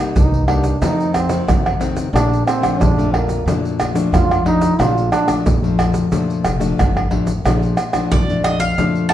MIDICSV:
0, 0, Header, 1, 8, 480
1, 0, Start_track
1, 0, Key_signature, -2, "major"
1, 0, Tempo, 663717
1, 1550, Time_signature, 4, 2, 24, 8
1, 6607, End_track
2, 0, Start_track
2, 0, Title_t, "Mandolin"
2, 0, Program_c, 0, 25
2, 5869, Note_on_c, 0, 74, 88
2, 6103, Note_off_c, 0, 74, 0
2, 6106, Note_on_c, 0, 75, 78
2, 6218, Note_on_c, 0, 77, 94
2, 6220, Note_off_c, 0, 75, 0
2, 6570, Note_off_c, 0, 77, 0
2, 6573, Note_on_c, 0, 81, 94
2, 6607, Note_off_c, 0, 81, 0
2, 6607, End_track
3, 0, Start_track
3, 0, Title_t, "Trombone"
3, 0, Program_c, 1, 57
3, 118, Note_on_c, 1, 63, 71
3, 336, Note_off_c, 1, 63, 0
3, 340, Note_on_c, 1, 62, 80
3, 593, Note_on_c, 1, 63, 95
3, 604, Note_off_c, 1, 62, 0
3, 819, Note_off_c, 1, 63, 0
3, 824, Note_on_c, 1, 60, 84
3, 1050, Note_off_c, 1, 60, 0
3, 1544, Note_on_c, 1, 62, 90
3, 1770, Note_off_c, 1, 62, 0
3, 1781, Note_on_c, 1, 60, 90
3, 2026, Note_on_c, 1, 62, 93
3, 2037, Note_off_c, 1, 60, 0
3, 2260, Note_on_c, 1, 58, 74
3, 2271, Note_off_c, 1, 62, 0
3, 2505, Note_off_c, 1, 58, 0
3, 2993, Note_on_c, 1, 65, 87
3, 3214, Note_off_c, 1, 65, 0
3, 3225, Note_on_c, 1, 63, 91
3, 3470, Note_on_c, 1, 65, 92
3, 3481, Note_off_c, 1, 63, 0
3, 3700, Note_off_c, 1, 65, 0
3, 3705, Note_on_c, 1, 62, 86
3, 3850, Note_off_c, 1, 62, 0
3, 6607, End_track
4, 0, Start_track
4, 0, Title_t, "Nylon-string guitar"
4, 0, Program_c, 2, 24
4, 0, Note_on_c, 2, 48, 59
4, 0, Note_on_c, 2, 55, 54
4, 0, Note_on_c, 2, 58, 60
4, 0, Note_on_c, 2, 63, 68
4, 87, Note_off_c, 2, 48, 0
4, 114, Note_on_c, 2, 43, 61
4, 305, Note_off_c, 2, 55, 0
4, 306, Note_off_c, 2, 58, 0
4, 308, Note_off_c, 2, 63, 0
4, 343, Note_on_c, 2, 55, 54
4, 346, Note_on_c, 2, 58, 56
4, 349, Note_on_c, 2, 63, 64
4, 548, Note_off_c, 2, 55, 0
4, 550, Note_off_c, 2, 58, 0
4, 550, Note_off_c, 2, 63, 0
4, 568, Note_off_c, 2, 43, 0
4, 590, Note_on_c, 2, 41, 61
4, 592, Note_on_c, 2, 51, 59
4, 595, Note_on_c, 2, 57, 61
4, 598, Note_on_c, 2, 60, 62
4, 816, Note_off_c, 2, 51, 0
4, 817, Note_off_c, 2, 57, 0
4, 819, Note_off_c, 2, 60, 0
4, 936, Note_on_c, 2, 51, 66
4, 940, Note_on_c, 2, 57, 59
4, 942, Note_on_c, 2, 60, 67
4, 1046, Note_off_c, 2, 41, 0
4, 1069, Note_on_c, 2, 48, 59
4, 1265, Note_off_c, 2, 51, 0
4, 1265, Note_off_c, 2, 57, 0
4, 1268, Note_off_c, 2, 60, 0
4, 1299, Note_on_c, 2, 51, 59
4, 1303, Note_on_c, 2, 57, 57
4, 1308, Note_on_c, 2, 60, 68
4, 1506, Note_off_c, 2, 51, 0
4, 1509, Note_off_c, 2, 57, 0
4, 1510, Note_off_c, 2, 60, 0
4, 1525, Note_off_c, 2, 48, 0
4, 1544, Note_on_c, 2, 46, 60
4, 1544, Note_on_c, 2, 53, 55
4, 1547, Note_on_c, 2, 57, 53
4, 1548, Note_on_c, 2, 62, 68
4, 1772, Note_off_c, 2, 53, 0
4, 1774, Note_off_c, 2, 57, 0
4, 1774, Note_off_c, 2, 62, 0
4, 1888, Note_on_c, 2, 53, 61
4, 1892, Note_on_c, 2, 57, 57
4, 1895, Note_on_c, 2, 62, 67
4, 2003, Note_off_c, 2, 46, 0
4, 2026, Note_on_c, 2, 41, 62
4, 2101, Note_off_c, 2, 53, 0
4, 2102, Note_off_c, 2, 57, 0
4, 2104, Note_off_c, 2, 62, 0
4, 2153, Note_on_c, 2, 53, 62
4, 2156, Note_on_c, 2, 57, 64
4, 2159, Note_on_c, 2, 62, 68
4, 2473, Note_off_c, 2, 53, 0
4, 2474, Note_off_c, 2, 57, 0
4, 2476, Note_off_c, 2, 62, 0
4, 2484, Note_off_c, 2, 41, 0
4, 2512, Note_on_c, 2, 46, 64
4, 2517, Note_on_c, 2, 53, 62
4, 2517, Note_on_c, 2, 57, 67
4, 2520, Note_on_c, 2, 62, 65
4, 2834, Note_off_c, 2, 53, 0
4, 2835, Note_off_c, 2, 57, 0
4, 2836, Note_off_c, 2, 62, 0
4, 2854, Note_on_c, 2, 53, 62
4, 2858, Note_on_c, 2, 57, 68
4, 2859, Note_on_c, 2, 62, 74
4, 2967, Note_off_c, 2, 46, 0
4, 2988, Note_on_c, 2, 41, 62
4, 3184, Note_off_c, 2, 53, 0
4, 3185, Note_off_c, 2, 57, 0
4, 3186, Note_off_c, 2, 62, 0
4, 3219, Note_on_c, 2, 53, 62
4, 3224, Note_on_c, 2, 57, 62
4, 3228, Note_on_c, 2, 62, 62
4, 3426, Note_off_c, 2, 53, 0
4, 3429, Note_off_c, 2, 57, 0
4, 3430, Note_off_c, 2, 62, 0
4, 3445, Note_off_c, 2, 41, 0
4, 3467, Note_on_c, 2, 46, 60
4, 3467, Note_on_c, 2, 53, 51
4, 3471, Note_on_c, 2, 57, 61
4, 3475, Note_on_c, 2, 62, 65
4, 3790, Note_off_c, 2, 53, 0
4, 3792, Note_off_c, 2, 57, 0
4, 3794, Note_off_c, 2, 62, 0
4, 3810, Note_on_c, 2, 53, 58
4, 3814, Note_on_c, 2, 57, 66
4, 3818, Note_on_c, 2, 62, 67
4, 3924, Note_off_c, 2, 46, 0
4, 3954, Note_on_c, 2, 41, 65
4, 4022, Note_off_c, 2, 53, 0
4, 4023, Note_off_c, 2, 57, 0
4, 4025, Note_off_c, 2, 62, 0
4, 4073, Note_on_c, 2, 53, 62
4, 4077, Note_on_c, 2, 57, 62
4, 4080, Note_on_c, 2, 62, 71
4, 4393, Note_off_c, 2, 53, 0
4, 4395, Note_off_c, 2, 57, 0
4, 4396, Note_off_c, 2, 62, 0
4, 4408, Note_off_c, 2, 41, 0
4, 4423, Note_on_c, 2, 46, 59
4, 4426, Note_on_c, 2, 53, 57
4, 4431, Note_on_c, 2, 57, 61
4, 4432, Note_on_c, 2, 62, 61
4, 4750, Note_off_c, 2, 53, 0
4, 4751, Note_off_c, 2, 57, 0
4, 4752, Note_off_c, 2, 62, 0
4, 4771, Note_on_c, 2, 53, 69
4, 4774, Note_on_c, 2, 57, 72
4, 4779, Note_on_c, 2, 62, 65
4, 4883, Note_off_c, 2, 46, 0
4, 4913, Note_on_c, 2, 41, 61
4, 5102, Note_off_c, 2, 53, 0
4, 5103, Note_off_c, 2, 57, 0
4, 5106, Note_off_c, 2, 62, 0
4, 5142, Note_on_c, 2, 53, 64
4, 5148, Note_on_c, 2, 57, 57
4, 5148, Note_on_c, 2, 62, 69
4, 5288, Note_off_c, 2, 53, 0
4, 5289, Note_off_c, 2, 57, 0
4, 5290, Note_off_c, 2, 62, 0
4, 5368, Note_off_c, 2, 41, 0
4, 5397, Note_on_c, 2, 46, 51
4, 5399, Note_on_c, 2, 53, 54
4, 5402, Note_on_c, 2, 57, 49
4, 5403, Note_on_c, 2, 62, 61
4, 5620, Note_off_c, 2, 53, 0
4, 5620, Note_off_c, 2, 57, 0
4, 5622, Note_off_c, 2, 62, 0
4, 5741, Note_on_c, 2, 53, 59
4, 5745, Note_on_c, 2, 57, 58
4, 5749, Note_on_c, 2, 62, 67
4, 5850, Note_off_c, 2, 46, 0
4, 5877, Note_on_c, 2, 41, 59
4, 5948, Note_off_c, 2, 53, 0
4, 5949, Note_off_c, 2, 57, 0
4, 5950, Note_off_c, 2, 62, 0
4, 6001, Note_on_c, 2, 53, 61
4, 6004, Note_on_c, 2, 57, 61
4, 6005, Note_on_c, 2, 62, 60
4, 6318, Note_off_c, 2, 57, 0
4, 6319, Note_off_c, 2, 53, 0
4, 6320, Note_off_c, 2, 62, 0
4, 6331, Note_off_c, 2, 41, 0
4, 6357, Note_on_c, 2, 46, 58
4, 6358, Note_on_c, 2, 53, 58
4, 6360, Note_on_c, 2, 57, 56
4, 6361, Note_on_c, 2, 62, 60
4, 6607, Note_off_c, 2, 46, 0
4, 6607, Note_off_c, 2, 53, 0
4, 6607, Note_off_c, 2, 57, 0
4, 6607, Note_off_c, 2, 62, 0
4, 6607, End_track
5, 0, Start_track
5, 0, Title_t, "Upright bass"
5, 0, Program_c, 3, 32
5, 112, Note_on_c, 3, 36, 93
5, 519, Note_off_c, 3, 36, 0
5, 590, Note_on_c, 3, 41, 93
5, 998, Note_off_c, 3, 41, 0
5, 1066, Note_on_c, 3, 41, 90
5, 1476, Note_off_c, 3, 41, 0
5, 1540, Note_on_c, 3, 34, 106
5, 1748, Note_off_c, 3, 34, 0
5, 2024, Note_on_c, 3, 34, 96
5, 2434, Note_off_c, 3, 34, 0
5, 2500, Note_on_c, 3, 41, 89
5, 2912, Note_off_c, 3, 41, 0
5, 2982, Note_on_c, 3, 41, 85
5, 3393, Note_off_c, 3, 41, 0
5, 3463, Note_on_c, 3, 34, 110
5, 3670, Note_off_c, 3, 34, 0
5, 3947, Note_on_c, 3, 34, 91
5, 4356, Note_off_c, 3, 34, 0
5, 4425, Note_on_c, 3, 41, 92
5, 4631, Note_off_c, 3, 41, 0
5, 4659, Note_on_c, 3, 29, 81
5, 4880, Note_off_c, 3, 29, 0
5, 4905, Note_on_c, 3, 31, 80
5, 5123, Note_off_c, 3, 31, 0
5, 5138, Note_on_c, 3, 33, 87
5, 5359, Note_off_c, 3, 33, 0
5, 5385, Note_on_c, 3, 34, 97
5, 5592, Note_off_c, 3, 34, 0
5, 5866, Note_on_c, 3, 34, 93
5, 6277, Note_off_c, 3, 34, 0
5, 6348, Note_on_c, 3, 41, 84
5, 6607, Note_off_c, 3, 41, 0
5, 6607, End_track
6, 0, Start_track
6, 0, Title_t, "Pandeiro"
6, 114, Note_on_c, 9, 54, 81
6, 187, Note_off_c, 9, 54, 0
6, 242, Note_on_c, 9, 54, 37
6, 315, Note_off_c, 9, 54, 0
6, 347, Note_on_c, 9, 54, 67
6, 420, Note_off_c, 9, 54, 0
6, 460, Note_on_c, 9, 54, 56
6, 533, Note_off_c, 9, 54, 0
6, 592, Note_on_c, 9, 54, 86
6, 665, Note_off_c, 9, 54, 0
6, 725, Note_on_c, 9, 54, 30
6, 797, Note_off_c, 9, 54, 0
6, 827, Note_on_c, 9, 54, 69
6, 899, Note_off_c, 9, 54, 0
6, 936, Note_on_c, 9, 54, 68
6, 1008, Note_off_c, 9, 54, 0
6, 1074, Note_on_c, 9, 54, 86
6, 1146, Note_off_c, 9, 54, 0
6, 1202, Note_on_c, 9, 54, 31
6, 1274, Note_off_c, 9, 54, 0
6, 1307, Note_on_c, 9, 54, 59
6, 1379, Note_off_c, 9, 54, 0
6, 1421, Note_on_c, 9, 54, 61
6, 1494, Note_off_c, 9, 54, 0
6, 1559, Note_on_c, 9, 54, 89
6, 1632, Note_off_c, 9, 54, 0
6, 1687, Note_on_c, 9, 54, 36
6, 1759, Note_off_c, 9, 54, 0
6, 1790, Note_on_c, 9, 54, 72
6, 1862, Note_off_c, 9, 54, 0
6, 1905, Note_on_c, 9, 54, 60
6, 1977, Note_off_c, 9, 54, 0
6, 2032, Note_on_c, 9, 54, 85
6, 2105, Note_off_c, 9, 54, 0
6, 2160, Note_on_c, 9, 54, 37
6, 2233, Note_off_c, 9, 54, 0
6, 2270, Note_on_c, 9, 54, 64
6, 2342, Note_off_c, 9, 54, 0
6, 2379, Note_on_c, 9, 54, 54
6, 2452, Note_off_c, 9, 54, 0
6, 2514, Note_on_c, 9, 54, 81
6, 2586, Note_off_c, 9, 54, 0
6, 2641, Note_on_c, 9, 54, 32
6, 2713, Note_off_c, 9, 54, 0
6, 2745, Note_on_c, 9, 54, 73
6, 2818, Note_off_c, 9, 54, 0
6, 2861, Note_on_c, 9, 54, 63
6, 2933, Note_off_c, 9, 54, 0
6, 2992, Note_on_c, 9, 54, 82
6, 3065, Note_off_c, 9, 54, 0
6, 3120, Note_on_c, 9, 54, 36
6, 3192, Note_off_c, 9, 54, 0
6, 3225, Note_on_c, 9, 54, 64
6, 3298, Note_off_c, 9, 54, 0
6, 3336, Note_on_c, 9, 54, 59
6, 3409, Note_off_c, 9, 54, 0
6, 3469, Note_on_c, 9, 54, 87
6, 3542, Note_off_c, 9, 54, 0
6, 3598, Note_on_c, 9, 54, 35
6, 3670, Note_off_c, 9, 54, 0
6, 3704, Note_on_c, 9, 54, 76
6, 3776, Note_off_c, 9, 54, 0
6, 3818, Note_on_c, 9, 54, 59
6, 3890, Note_off_c, 9, 54, 0
6, 3950, Note_on_c, 9, 54, 89
6, 4022, Note_off_c, 9, 54, 0
6, 4077, Note_on_c, 9, 54, 32
6, 4150, Note_off_c, 9, 54, 0
6, 4186, Note_on_c, 9, 54, 69
6, 4258, Note_off_c, 9, 54, 0
6, 4295, Note_on_c, 9, 54, 59
6, 4367, Note_off_c, 9, 54, 0
6, 4425, Note_on_c, 9, 54, 77
6, 4498, Note_off_c, 9, 54, 0
6, 4556, Note_on_c, 9, 54, 32
6, 4629, Note_off_c, 9, 54, 0
6, 4661, Note_on_c, 9, 54, 74
6, 4733, Note_off_c, 9, 54, 0
6, 4779, Note_on_c, 9, 54, 59
6, 4851, Note_off_c, 9, 54, 0
6, 4913, Note_on_c, 9, 54, 84
6, 4985, Note_off_c, 9, 54, 0
6, 5039, Note_on_c, 9, 54, 36
6, 5111, Note_off_c, 9, 54, 0
6, 5142, Note_on_c, 9, 54, 62
6, 5215, Note_off_c, 9, 54, 0
6, 5257, Note_on_c, 9, 54, 61
6, 5329, Note_off_c, 9, 54, 0
6, 5392, Note_on_c, 9, 54, 87
6, 5464, Note_off_c, 9, 54, 0
6, 5516, Note_on_c, 9, 54, 33
6, 5589, Note_off_c, 9, 54, 0
6, 5620, Note_on_c, 9, 54, 65
6, 5693, Note_off_c, 9, 54, 0
6, 5737, Note_on_c, 9, 54, 60
6, 5809, Note_off_c, 9, 54, 0
6, 5869, Note_on_c, 9, 54, 88
6, 5942, Note_off_c, 9, 54, 0
6, 5998, Note_on_c, 9, 54, 32
6, 6071, Note_off_c, 9, 54, 0
6, 6106, Note_on_c, 9, 54, 60
6, 6178, Note_off_c, 9, 54, 0
6, 6217, Note_on_c, 9, 54, 50
6, 6289, Note_off_c, 9, 54, 0
6, 6350, Note_on_c, 9, 54, 77
6, 6422, Note_off_c, 9, 54, 0
6, 6474, Note_on_c, 9, 54, 30
6, 6547, Note_off_c, 9, 54, 0
6, 6581, Note_on_c, 9, 54, 67
6, 6607, Note_off_c, 9, 54, 0
6, 6607, End_track
7, 0, Start_track
7, 0, Title_t, "Tamborim"
7, 347, Note_on_c, 9, 60, 74
7, 420, Note_off_c, 9, 60, 0
7, 827, Note_on_c, 9, 60, 79
7, 899, Note_off_c, 9, 60, 0
7, 1074, Note_on_c, 9, 60, 81
7, 1146, Note_off_c, 9, 60, 0
7, 1202, Note_on_c, 9, 60, 83
7, 1274, Note_off_c, 9, 60, 0
7, 1559, Note_on_c, 9, 60, 91
7, 1632, Note_off_c, 9, 60, 0
7, 1790, Note_on_c, 9, 60, 84
7, 1862, Note_off_c, 9, 60, 0
7, 1905, Note_on_c, 9, 60, 81
7, 1977, Note_off_c, 9, 60, 0
7, 2270, Note_on_c, 9, 60, 83
7, 2342, Note_off_c, 9, 60, 0
7, 2745, Note_on_c, 9, 60, 80
7, 2818, Note_off_c, 9, 60, 0
7, 2992, Note_on_c, 9, 60, 79
7, 3065, Note_off_c, 9, 60, 0
7, 3120, Note_on_c, 9, 60, 83
7, 3192, Note_off_c, 9, 60, 0
7, 3469, Note_on_c, 9, 60, 81
7, 3542, Note_off_c, 9, 60, 0
7, 3704, Note_on_c, 9, 60, 85
7, 3776, Note_off_c, 9, 60, 0
7, 3818, Note_on_c, 9, 60, 81
7, 3890, Note_off_c, 9, 60, 0
7, 4186, Note_on_c, 9, 60, 85
7, 4258, Note_off_c, 9, 60, 0
7, 4661, Note_on_c, 9, 60, 83
7, 4733, Note_off_c, 9, 60, 0
7, 4913, Note_on_c, 9, 60, 86
7, 4985, Note_off_c, 9, 60, 0
7, 5039, Note_on_c, 9, 60, 77
7, 5111, Note_off_c, 9, 60, 0
7, 5392, Note_on_c, 9, 60, 79
7, 5464, Note_off_c, 9, 60, 0
7, 5620, Note_on_c, 9, 60, 77
7, 5693, Note_off_c, 9, 60, 0
7, 5737, Note_on_c, 9, 60, 83
7, 5809, Note_off_c, 9, 60, 0
7, 6106, Note_on_c, 9, 60, 84
7, 6178, Note_off_c, 9, 60, 0
7, 6581, Note_on_c, 9, 60, 82
7, 6607, Note_off_c, 9, 60, 0
7, 6607, End_track
8, 0, Start_track
8, 0, Title_t, "Drums"
8, 114, Note_on_c, 9, 82, 84
8, 114, Note_on_c, 9, 87, 107
8, 187, Note_off_c, 9, 82, 0
8, 187, Note_off_c, 9, 87, 0
8, 242, Note_on_c, 9, 82, 35
8, 315, Note_off_c, 9, 82, 0
8, 347, Note_on_c, 9, 87, 32
8, 420, Note_off_c, 9, 87, 0
8, 460, Note_on_c, 9, 82, 77
8, 533, Note_off_c, 9, 82, 0
8, 592, Note_on_c, 9, 82, 84
8, 592, Note_on_c, 9, 87, 54
8, 665, Note_off_c, 9, 82, 0
8, 665, Note_off_c, 9, 87, 0
8, 725, Note_on_c, 9, 82, 33
8, 797, Note_off_c, 9, 82, 0
8, 827, Note_on_c, 9, 82, 75
8, 827, Note_on_c, 9, 87, 34
8, 899, Note_off_c, 9, 82, 0
8, 899, Note_off_c, 9, 87, 0
8, 936, Note_on_c, 9, 82, 82
8, 1008, Note_off_c, 9, 82, 0
8, 1074, Note_on_c, 9, 82, 83
8, 1074, Note_on_c, 9, 87, 108
8, 1146, Note_off_c, 9, 82, 0
8, 1146, Note_off_c, 9, 87, 0
8, 1202, Note_on_c, 9, 82, 32
8, 1274, Note_off_c, 9, 82, 0
8, 1307, Note_on_c, 9, 82, 60
8, 1379, Note_off_c, 9, 82, 0
8, 1421, Note_on_c, 9, 82, 78
8, 1421, Note_on_c, 9, 87, 34
8, 1494, Note_off_c, 9, 82, 0
8, 1494, Note_off_c, 9, 87, 0
8, 1559, Note_on_c, 9, 82, 85
8, 1559, Note_on_c, 9, 87, 57
8, 1632, Note_off_c, 9, 82, 0
8, 1632, Note_off_c, 9, 87, 0
8, 1687, Note_on_c, 9, 82, 34
8, 1759, Note_off_c, 9, 82, 0
8, 1790, Note_on_c, 9, 82, 71
8, 1862, Note_off_c, 9, 82, 0
8, 1905, Note_on_c, 9, 82, 75
8, 1905, Note_on_c, 9, 87, 33
8, 1977, Note_off_c, 9, 82, 0
8, 1977, Note_off_c, 9, 87, 0
8, 2032, Note_on_c, 9, 82, 91
8, 2032, Note_on_c, 9, 87, 105
8, 2105, Note_off_c, 9, 82, 0
8, 2105, Note_off_c, 9, 87, 0
8, 2160, Note_on_c, 9, 82, 35
8, 2233, Note_off_c, 9, 82, 0
8, 2270, Note_on_c, 9, 87, 37
8, 2342, Note_off_c, 9, 87, 0
8, 2379, Note_on_c, 9, 82, 77
8, 2452, Note_off_c, 9, 82, 0
8, 2514, Note_on_c, 9, 82, 86
8, 2514, Note_on_c, 9, 87, 60
8, 2586, Note_off_c, 9, 82, 0
8, 2586, Note_off_c, 9, 87, 0
8, 2641, Note_on_c, 9, 82, 31
8, 2713, Note_off_c, 9, 82, 0
8, 2745, Note_on_c, 9, 82, 77
8, 2745, Note_on_c, 9, 87, 36
8, 2818, Note_off_c, 9, 82, 0
8, 2818, Note_off_c, 9, 87, 0
8, 2861, Note_on_c, 9, 82, 95
8, 2933, Note_off_c, 9, 82, 0
8, 2992, Note_on_c, 9, 82, 81
8, 2992, Note_on_c, 9, 87, 108
8, 3065, Note_off_c, 9, 82, 0
8, 3065, Note_off_c, 9, 87, 0
8, 3120, Note_on_c, 9, 82, 33
8, 3192, Note_off_c, 9, 82, 0
8, 3225, Note_on_c, 9, 87, 30
8, 3298, Note_off_c, 9, 87, 0
8, 3336, Note_on_c, 9, 82, 81
8, 3336, Note_on_c, 9, 87, 33
8, 3409, Note_off_c, 9, 82, 0
8, 3409, Note_off_c, 9, 87, 0
8, 3469, Note_on_c, 9, 82, 90
8, 3469, Note_on_c, 9, 87, 62
8, 3542, Note_off_c, 9, 82, 0
8, 3542, Note_off_c, 9, 87, 0
8, 3598, Note_on_c, 9, 82, 37
8, 3670, Note_off_c, 9, 82, 0
8, 3704, Note_on_c, 9, 82, 73
8, 3776, Note_off_c, 9, 82, 0
8, 3818, Note_on_c, 9, 82, 80
8, 3818, Note_on_c, 9, 87, 34
8, 3890, Note_off_c, 9, 82, 0
8, 3890, Note_off_c, 9, 87, 0
8, 3950, Note_on_c, 9, 82, 80
8, 3950, Note_on_c, 9, 87, 112
8, 4022, Note_off_c, 9, 82, 0
8, 4022, Note_off_c, 9, 87, 0
8, 4077, Note_on_c, 9, 82, 36
8, 4150, Note_off_c, 9, 82, 0
8, 4186, Note_on_c, 9, 82, 73
8, 4186, Note_on_c, 9, 87, 33
8, 4258, Note_off_c, 9, 82, 0
8, 4258, Note_off_c, 9, 87, 0
8, 4295, Note_on_c, 9, 82, 83
8, 4367, Note_off_c, 9, 82, 0
8, 4425, Note_on_c, 9, 82, 80
8, 4425, Note_on_c, 9, 87, 64
8, 4498, Note_off_c, 9, 82, 0
8, 4498, Note_off_c, 9, 87, 0
8, 4556, Note_on_c, 9, 82, 34
8, 4629, Note_off_c, 9, 82, 0
8, 4661, Note_on_c, 9, 82, 75
8, 4661, Note_on_c, 9, 87, 37
8, 4733, Note_off_c, 9, 82, 0
8, 4733, Note_off_c, 9, 87, 0
8, 4779, Note_on_c, 9, 82, 96
8, 4851, Note_off_c, 9, 82, 0
8, 4913, Note_on_c, 9, 82, 90
8, 4913, Note_on_c, 9, 87, 102
8, 4985, Note_off_c, 9, 82, 0
8, 4985, Note_off_c, 9, 87, 0
8, 5039, Note_on_c, 9, 82, 35
8, 5111, Note_off_c, 9, 82, 0
8, 5257, Note_on_c, 9, 82, 82
8, 5257, Note_on_c, 9, 87, 33
8, 5329, Note_off_c, 9, 82, 0
8, 5329, Note_off_c, 9, 87, 0
8, 5392, Note_on_c, 9, 82, 82
8, 5392, Note_on_c, 9, 87, 64
8, 5464, Note_off_c, 9, 82, 0
8, 5464, Note_off_c, 9, 87, 0
8, 5516, Note_on_c, 9, 82, 34
8, 5589, Note_off_c, 9, 82, 0
8, 5620, Note_on_c, 9, 82, 72
8, 5693, Note_off_c, 9, 82, 0
8, 5737, Note_on_c, 9, 82, 70
8, 5737, Note_on_c, 9, 87, 32
8, 5809, Note_off_c, 9, 82, 0
8, 5809, Note_off_c, 9, 87, 0
8, 5869, Note_on_c, 9, 82, 78
8, 5869, Note_on_c, 9, 87, 102
8, 5942, Note_off_c, 9, 82, 0
8, 5942, Note_off_c, 9, 87, 0
8, 5998, Note_on_c, 9, 82, 33
8, 6071, Note_off_c, 9, 82, 0
8, 6106, Note_on_c, 9, 82, 69
8, 6106, Note_on_c, 9, 87, 30
8, 6178, Note_off_c, 9, 82, 0
8, 6178, Note_off_c, 9, 87, 0
8, 6217, Note_on_c, 9, 82, 72
8, 6289, Note_off_c, 9, 82, 0
8, 6350, Note_on_c, 9, 82, 80
8, 6350, Note_on_c, 9, 87, 57
8, 6422, Note_off_c, 9, 82, 0
8, 6422, Note_off_c, 9, 87, 0
8, 6474, Note_on_c, 9, 82, 30
8, 6547, Note_off_c, 9, 82, 0
8, 6581, Note_on_c, 9, 87, 31
8, 6607, Note_off_c, 9, 87, 0
8, 6607, End_track
0, 0, End_of_file